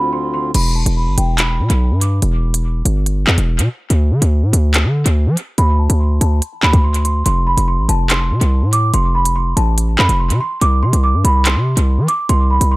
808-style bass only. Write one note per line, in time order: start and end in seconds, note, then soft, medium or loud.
0.55 0.85 E1 loud
0.86 1.08 E1 loud
1.07 1.17 G1 loud
1.18 1.61 E1 loud
1.59 1.69 B2 loud
1.70 1.92 B1 loud
1.91 2.21 G2 loud
2.22 2.83 E1 loud
2.85 3.26 G1 loud
3.27 3.37 E2 loud
3.38 3.60 E1 loud
3.59 3.69 B2 loud
3.90 4.13 D2 loud
4.11 4.21 D3 loud
4.22 4.44 D2 loud
4.43 4.53 A2 loud
4.53 4.86 D2 loud
4.85 5.05 D3 loud
5.06 5.28 D2 loud
5.27 5.37 F3 loud
5.58 5.88 D2 loud
5.90 6.20 D2 loud
6.21 6.41 D2 loud
6.63 7.23 D2 loud
7.26 7.56 F1 loud
7.57 7.80 F1 loud
7.78 7.88 A1 loud
7.89 8.32 F1 loud
8.31 8.41 C3 loud
8.41 8.64 C2 loud
8.62 8.92 A2 loud
8.94 9.54 F1 loud
9.57 9.97 A1 loud
9.99 10.08 F2 loud
10.09 10.32 F1 loud
10.30 10.40 C3 loud
10.62 10.84 C2 loud
10.83 10.93 C3 loud
10.93 11.15 C2 loud
11.14 11.24 G2 loud
11.24 11.57 C2 loud
11.56 11.76 C3 loud
11.77 11.99 C2 loud
11.98 12.08 E3 loud
12.29 12.60 C2 loud
12.61 12.77 C2 loud